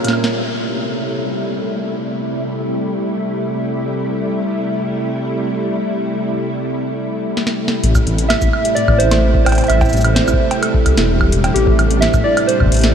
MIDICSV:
0, 0, Header, 1, 7, 480
1, 0, Start_track
1, 0, Key_signature, 0, "minor"
1, 0, Tempo, 465116
1, 407, Time_signature, 4, 2, 24, 8
1, 13358, End_track
2, 0, Start_track
2, 0, Title_t, "Synth texture"
2, 0, Program_c, 0, 99
2, 0, Note_on_c, 0, 76, 78
2, 416, Note_off_c, 0, 76, 0
2, 13358, End_track
3, 0, Start_track
3, 0, Title_t, "Synth keys"
3, 0, Program_c, 1, 88
3, 0, Note_on_c, 1, 73, 110
3, 118, Note_off_c, 1, 73, 0
3, 8551, Note_on_c, 1, 76, 109
3, 9031, Note_on_c, 1, 74, 109
3, 9054, Note_off_c, 1, 76, 0
3, 9271, Note_on_c, 1, 72, 103
3, 9286, Note_off_c, 1, 74, 0
3, 9739, Note_off_c, 1, 72, 0
3, 9751, Note_on_c, 1, 72, 94
3, 9991, Note_on_c, 1, 76, 105
3, 10006, Note_off_c, 1, 72, 0
3, 10445, Note_off_c, 1, 76, 0
3, 10471, Note_on_c, 1, 72, 94
3, 10925, Note_off_c, 1, 72, 0
3, 10952, Note_on_c, 1, 69, 78
3, 11638, Note_off_c, 1, 69, 0
3, 11911, Note_on_c, 1, 67, 95
3, 12365, Note_off_c, 1, 67, 0
3, 12391, Note_on_c, 1, 76, 107
3, 12630, Note_on_c, 1, 74, 102
3, 12646, Note_off_c, 1, 76, 0
3, 12861, Note_off_c, 1, 74, 0
3, 12870, Note_on_c, 1, 72, 106
3, 13358, Note_off_c, 1, 72, 0
3, 13358, End_track
4, 0, Start_track
4, 0, Title_t, "String machine"
4, 0, Program_c, 2, 50
4, 0, Note_on_c, 2, 49, 80
4, 0, Note_on_c, 2, 55, 77
4, 0, Note_on_c, 2, 58, 75
4, 0, Note_on_c, 2, 65, 90
4, 366, Note_off_c, 2, 49, 0
4, 366, Note_off_c, 2, 55, 0
4, 366, Note_off_c, 2, 58, 0
4, 366, Note_off_c, 2, 65, 0
4, 407, Note_on_c, 2, 48, 81
4, 407, Note_on_c, 2, 64, 85
4, 408, Note_on_c, 2, 55, 72
4, 408, Note_on_c, 2, 57, 72
4, 8046, Note_off_c, 2, 48, 0
4, 8046, Note_off_c, 2, 55, 0
4, 8046, Note_off_c, 2, 57, 0
4, 8046, Note_off_c, 2, 64, 0
4, 8087, Note_on_c, 2, 48, 80
4, 8087, Note_on_c, 2, 55, 75
4, 8087, Note_on_c, 2, 57, 73
4, 8087, Note_on_c, 2, 64, 91
4, 11889, Note_off_c, 2, 64, 0
4, 11926, Note_on_c, 2, 62, 90
4, 13358, Note_off_c, 2, 48, 0
4, 13358, Note_off_c, 2, 55, 0
4, 13358, Note_off_c, 2, 57, 0
4, 13358, Note_off_c, 2, 62, 0
4, 13358, End_track
5, 0, Start_track
5, 0, Title_t, "Synth pluck"
5, 0, Program_c, 3, 84
5, 46, Note_on_c, 3, 46, 78
5, 138, Note_off_c, 3, 46, 0
5, 166, Note_on_c, 3, 58, 75
5, 258, Note_off_c, 3, 58, 0
5, 8086, Note_on_c, 3, 57, 105
5, 8178, Note_off_c, 3, 57, 0
5, 8206, Note_on_c, 3, 57, 79
5, 8298, Note_off_c, 3, 57, 0
5, 8326, Note_on_c, 3, 57, 77
5, 8418, Note_off_c, 3, 57, 0
5, 8566, Note_on_c, 3, 45, 84
5, 8680, Note_off_c, 3, 45, 0
5, 8686, Note_on_c, 3, 64, 80
5, 8778, Note_off_c, 3, 64, 0
5, 8926, Note_on_c, 3, 55, 74
5, 9018, Note_off_c, 3, 55, 0
5, 9046, Note_on_c, 3, 45, 82
5, 9161, Note_off_c, 3, 45, 0
5, 9166, Note_on_c, 3, 60, 78
5, 9258, Note_off_c, 3, 60, 0
5, 9287, Note_on_c, 3, 64, 101
5, 9378, Note_off_c, 3, 64, 0
5, 9406, Note_on_c, 3, 57, 103
5, 9498, Note_off_c, 3, 57, 0
5, 9527, Note_on_c, 3, 57, 81
5, 9618, Note_off_c, 3, 57, 0
5, 9646, Note_on_c, 3, 57, 80
5, 9738, Note_off_c, 3, 57, 0
5, 9886, Note_on_c, 3, 45, 74
5, 10001, Note_off_c, 3, 45, 0
5, 10006, Note_on_c, 3, 64, 83
5, 10098, Note_off_c, 3, 64, 0
5, 10246, Note_on_c, 3, 55, 75
5, 10338, Note_off_c, 3, 55, 0
5, 10366, Note_on_c, 3, 45, 76
5, 10481, Note_off_c, 3, 45, 0
5, 10486, Note_on_c, 3, 60, 87
5, 10578, Note_off_c, 3, 60, 0
5, 10606, Note_on_c, 3, 64, 105
5, 10698, Note_off_c, 3, 64, 0
5, 10726, Note_on_c, 3, 57, 99
5, 10818, Note_off_c, 3, 57, 0
5, 10846, Note_on_c, 3, 57, 77
5, 10938, Note_off_c, 3, 57, 0
5, 10966, Note_on_c, 3, 57, 84
5, 11058, Note_off_c, 3, 57, 0
5, 11206, Note_on_c, 3, 45, 75
5, 11321, Note_off_c, 3, 45, 0
5, 11326, Note_on_c, 3, 64, 77
5, 11418, Note_off_c, 3, 64, 0
5, 11566, Note_on_c, 3, 55, 80
5, 11658, Note_off_c, 3, 55, 0
5, 11686, Note_on_c, 3, 45, 76
5, 11801, Note_off_c, 3, 45, 0
5, 11806, Note_on_c, 3, 60, 77
5, 11898, Note_off_c, 3, 60, 0
5, 11926, Note_on_c, 3, 64, 106
5, 12018, Note_off_c, 3, 64, 0
5, 12046, Note_on_c, 3, 57, 99
5, 12138, Note_off_c, 3, 57, 0
5, 12166, Note_on_c, 3, 57, 75
5, 12258, Note_off_c, 3, 57, 0
5, 12286, Note_on_c, 3, 57, 74
5, 12378, Note_off_c, 3, 57, 0
5, 12526, Note_on_c, 3, 45, 80
5, 12641, Note_off_c, 3, 45, 0
5, 12646, Note_on_c, 3, 64, 74
5, 12738, Note_off_c, 3, 64, 0
5, 12886, Note_on_c, 3, 55, 88
5, 12978, Note_off_c, 3, 55, 0
5, 13007, Note_on_c, 3, 45, 77
5, 13121, Note_off_c, 3, 45, 0
5, 13126, Note_on_c, 3, 60, 77
5, 13218, Note_off_c, 3, 60, 0
5, 13246, Note_on_c, 3, 64, 106
5, 13338, Note_off_c, 3, 64, 0
5, 13358, End_track
6, 0, Start_track
6, 0, Title_t, "Detuned saw bass"
6, 0, Program_c, 4, 39
6, 8087, Note_on_c, 4, 33, 97
6, 8233, Note_off_c, 4, 33, 0
6, 8326, Note_on_c, 4, 33, 96
6, 8612, Note_off_c, 4, 33, 0
6, 8687, Note_on_c, 4, 33, 79
6, 8760, Note_off_c, 4, 33, 0
6, 9167, Note_on_c, 4, 33, 87
6, 9692, Note_off_c, 4, 33, 0
6, 9767, Note_on_c, 4, 33, 79
6, 9913, Note_off_c, 4, 33, 0
6, 10007, Note_on_c, 4, 33, 97
6, 10154, Note_off_c, 4, 33, 0
6, 10247, Note_on_c, 4, 33, 97
6, 10532, Note_off_c, 4, 33, 0
6, 10607, Note_on_c, 4, 33, 80
6, 10680, Note_off_c, 4, 33, 0
6, 11207, Note_on_c, 4, 36, 94
6, 11280, Note_off_c, 4, 36, 0
6, 11327, Note_on_c, 4, 28, 105
6, 11852, Note_off_c, 4, 28, 0
6, 11927, Note_on_c, 4, 33, 97
6, 12073, Note_off_c, 4, 33, 0
6, 12167, Note_on_c, 4, 33, 102
6, 12452, Note_off_c, 4, 33, 0
6, 12527, Note_on_c, 4, 33, 82
6, 12600, Note_off_c, 4, 33, 0
6, 13007, Note_on_c, 4, 33, 84
6, 13358, Note_off_c, 4, 33, 0
6, 13358, End_track
7, 0, Start_track
7, 0, Title_t, "Drums"
7, 46, Note_on_c, 9, 42, 55
7, 46, Note_on_c, 9, 76, 25
7, 77, Note_off_c, 9, 76, 0
7, 77, Note_on_c, 9, 76, 32
7, 87, Note_on_c, 9, 38, 85
7, 107, Note_off_c, 9, 76, 0
7, 107, Note_on_c, 9, 76, 38
7, 137, Note_off_c, 9, 76, 0
7, 137, Note_on_c, 9, 76, 46
7, 149, Note_off_c, 9, 42, 0
7, 190, Note_off_c, 9, 38, 0
7, 240, Note_off_c, 9, 76, 0
7, 247, Note_on_c, 9, 38, 92
7, 350, Note_off_c, 9, 38, 0
7, 7606, Note_on_c, 9, 38, 63
7, 7706, Note_off_c, 9, 38, 0
7, 7706, Note_on_c, 9, 38, 76
7, 7810, Note_off_c, 9, 38, 0
7, 7926, Note_on_c, 9, 38, 90
7, 8030, Note_off_c, 9, 38, 0
7, 8086, Note_on_c, 9, 42, 72
7, 8190, Note_off_c, 9, 42, 0
7, 8206, Note_on_c, 9, 36, 117
7, 8206, Note_on_c, 9, 69, 77
7, 8206, Note_on_c, 9, 76, 53
7, 8309, Note_off_c, 9, 69, 0
7, 8309, Note_off_c, 9, 76, 0
7, 8310, Note_off_c, 9, 36, 0
7, 8326, Note_on_c, 9, 42, 39
7, 8430, Note_off_c, 9, 42, 0
7, 8446, Note_on_c, 9, 42, 56
7, 8550, Note_off_c, 9, 42, 0
7, 8567, Note_on_c, 9, 38, 120
7, 8567, Note_on_c, 9, 42, 68
7, 8567, Note_on_c, 9, 76, 84
7, 8670, Note_off_c, 9, 38, 0
7, 8670, Note_off_c, 9, 42, 0
7, 8670, Note_off_c, 9, 76, 0
7, 8686, Note_on_c, 9, 36, 106
7, 8687, Note_on_c, 9, 69, 80
7, 8790, Note_off_c, 9, 36, 0
7, 8790, Note_off_c, 9, 69, 0
7, 8807, Note_on_c, 9, 76, 54
7, 8910, Note_off_c, 9, 76, 0
7, 8926, Note_on_c, 9, 42, 58
7, 9030, Note_off_c, 9, 42, 0
7, 9046, Note_on_c, 9, 42, 70
7, 9149, Note_off_c, 9, 42, 0
7, 9166, Note_on_c, 9, 36, 112
7, 9166, Note_on_c, 9, 76, 80
7, 9270, Note_off_c, 9, 36, 0
7, 9270, Note_off_c, 9, 76, 0
7, 9286, Note_on_c, 9, 42, 70
7, 9389, Note_off_c, 9, 42, 0
7, 9406, Note_on_c, 9, 38, 113
7, 9406, Note_on_c, 9, 42, 55
7, 9406, Note_on_c, 9, 76, 57
7, 9509, Note_off_c, 9, 38, 0
7, 9509, Note_off_c, 9, 42, 0
7, 9509, Note_off_c, 9, 76, 0
7, 9647, Note_on_c, 9, 36, 119
7, 9750, Note_off_c, 9, 36, 0
7, 9767, Note_on_c, 9, 42, 60
7, 9767, Note_on_c, 9, 56, 85
7, 9767, Note_on_c, 9, 76, 82
7, 9796, Note_off_c, 9, 42, 0
7, 9796, Note_on_c, 9, 42, 49
7, 9827, Note_off_c, 9, 42, 0
7, 9827, Note_off_c, 9, 56, 0
7, 9827, Note_on_c, 9, 42, 39
7, 9827, Note_on_c, 9, 56, 71
7, 9856, Note_off_c, 9, 42, 0
7, 9856, Note_on_c, 9, 42, 33
7, 9870, Note_off_c, 9, 76, 0
7, 9886, Note_off_c, 9, 42, 0
7, 9886, Note_off_c, 9, 56, 0
7, 9886, Note_on_c, 9, 42, 52
7, 9886, Note_on_c, 9, 56, 59
7, 9916, Note_off_c, 9, 42, 0
7, 9916, Note_on_c, 9, 42, 22
7, 9947, Note_off_c, 9, 42, 0
7, 9947, Note_off_c, 9, 56, 0
7, 9947, Note_on_c, 9, 42, 19
7, 9947, Note_on_c, 9, 56, 47
7, 9977, Note_off_c, 9, 42, 0
7, 9977, Note_on_c, 9, 42, 15
7, 10006, Note_off_c, 9, 42, 0
7, 10006, Note_on_c, 9, 42, 73
7, 10006, Note_on_c, 9, 76, 54
7, 10050, Note_off_c, 9, 56, 0
7, 10110, Note_off_c, 9, 42, 0
7, 10110, Note_off_c, 9, 76, 0
7, 10126, Note_on_c, 9, 56, 87
7, 10126, Note_on_c, 9, 69, 34
7, 10127, Note_on_c, 9, 36, 111
7, 10166, Note_off_c, 9, 69, 0
7, 10166, Note_on_c, 9, 69, 40
7, 10206, Note_off_c, 9, 69, 0
7, 10206, Note_on_c, 9, 69, 48
7, 10229, Note_off_c, 9, 56, 0
7, 10230, Note_off_c, 9, 36, 0
7, 10246, Note_off_c, 9, 69, 0
7, 10246, Note_on_c, 9, 42, 40
7, 10246, Note_on_c, 9, 69, 54
7, 10286, Note_off_c, 9, 69, 0
7, 10286, Note_on_c, 9, 69, 60
7, 10326, Note_off_c, 9, 69, 0
7, 10326, Note_on_c, 9, 69, 65
7, 10349, Note_off_c, 9, 42, 0
7, 10367, Note_on_c, 9, 42, 56
7, 10367, Note_on_c, 9, 76, 82
7, 10430, Note_off_c, 9, 69, 0
7, 10470, Note_off_c, 9, 42, 0
7, 10470, Note_off_c, 9, 76, 0
7, 10487, Note_on_c, 9, 38, 124
7, 10487, Note_on_c, 9, 42, 72
7, 10590, Note_off_c, 9, 38, 0
7, 10590, Note_off_c, 9, 42, 0
7, 10607, Note_on_c, 9, 69, 75
7, 10607, Note_on_c, 9, 76, 57
7, 10667, Note_on_c, 9, 36, 127
7, 10710, Note_off_c, 9, 69, 0
7, 10710, Note_off_c, 9, 76, 0
7, 10770, Note_off_c, 9, 36, 0
7, 10847, Note_on_c, 9, 42, 56
7, 10847, Note_on_c, 9, 56, 83
7, 10950, Note_off_c, 9, 42, 0
7, 10950, Note_off_c, 9, 56, 0
7, 10966, Note_on_c, 9, 42, 73
7, 10966, Note_on_c, 9, 76, 83
7, 11070, Note_off_c, 9, 42, 0
7, 11070, Note_off_c, 9, 76, 0
7, 11087, Note_on_c, 9, 36, 120
7, 11190, Note_off_c, 9, 36, 0
7, 11206, Note_on_c, 9, 42, 70
7, 11206, Note_on_c, 9, 76, 53
7, 11309, Note_off_c, 9, 42, 0
7, 11309, Note_off_c, 9, 76, 0
7, 11326, Note_on_c, 9, 38, 122
7, 11326, Note_on_c, 9, 42, 55
7, 11429, Note_off_c, 9, 38, 0
7, 11429, Note_off_c, 9, 42, 0
7, 11566, Note_on_c, 9, 76, 82
7, 11567, Note_on_c, 9, 36, 109
7, 11669, Note_off_c, 9, 76, 0
7, 11670, Note_off_c, 9, 36, 0
7, 11686, Note_on_c, 9, 42, 65
7, 11790, Note_off_c, 9, 42, 0
7, 11807, Note_on_c, 9, 42, 54
7, 11807, Note_on_c, 9, 56, 79
7, 11807, Note_on_c, 9, 76, 53
7, 11910, Note_off_c, 9, 42, 0
7, 11910, Note_off_c, 9, 56, 0
7, 11910, Note_off_c, 9, 76, 0
7, 11927, Note_on_c, 9, 42, 68
7, 12030, Note_off_c, 9, 42, 0
7, 12047, Note_on_c, 9, 36, 127
7, 12150, Note_off_c, 9, 36, 0
7, 12167, Note_on_c, 9, 42, 39
7, 12167, Note_on_c, 9, 76, 78
7, 12270, Note_off_c, 9, 42, 0
7, 12270, Note_off_c, 9, 76, 0
7, 12286, Note_on_c, 9, 42, 55
7, 12390, Note_off_c, 9, 42, 0
7, 12407, Note_on_c, 9, 38, 126
7, 12407, Note_on_c, 9, 42, 68
7, 12510, Note_off_c, 9, 38, 0
7, 12510, Note_off_c, 9, 42, 0
7, 12527, Note_on_c, 9, 36, 127
7, 12527, Note_on_c, 9, 69, 78
7, 12527, Note_on_c, 9, 76, 52
7, 12630, Note_off_c, 9, 36, 0
7, 12630, Note_off_c, 9, 69, 0
7, 12630, Note_off_c, 9, 76, 0
7, 12767, Note_on_c, 9, 42, 56
7, 12767, Note_on_c, 9, 76, 80
7, 12870, Note_off_c, 9, 42, 0
7, 12870, Note_off_c, 9, 76, 0
7, 12887, Note_on_c, 9, 42, 68
7, 12990, Note_off_c, 9, 42, 0
7, 13007, Note_on_c, 9, 36, 104
7, 13007, Note_on_c, 9, 76, 50
7, 13031, Note_off_c, 9, 36, 0
7, 13031, Note_on_c, 9, 36, 81
7, 13055, Note_off_c, 9, 36, 0
7, 13055, Note_on_c, 9, 36, 70
7, 13079, Note_off_c, 9, 36, 0
7, 13079, Note_on_c, 9, 36, 59
7, 13103, Note_off_c, 9, 36, 0
7, 13103, Note_on_c, 9, 36, 48
7, 13110, Note_off_c, 9, 76, 0
7, 13127, Note_on_c, 9, 42, 64
7, 13151, Note_off_c, 9, 42, 0
7, 13151, Note_on_c, 9, 42, 53
7, 13175, Note_off_c, 9, 42, 0
7, 13175, Note_on_c, 9, 42, 44
7, 13199, Note_off_c, 9, 42, 0
7, 13199, Note_on_c, 9, 42, 35
7, 13206, Note_off_c, 9, 36, 0
7, 13223, Note_off_c, 9, 42, 0
7, 13223, Note_on_c, 9, 42, 29
7, 13247, Note_off_c, 9, 42, 0
7, 13247, Note_on_c, 9, 38, 127
7, 13247, Note_on_c, 9, 42, 54
7, 13350, Note_off_c, 9, 38, 0
7, 13350, Note_off_c, 9, 42, 0
7, 13358, End_track
0, 0, End_of_file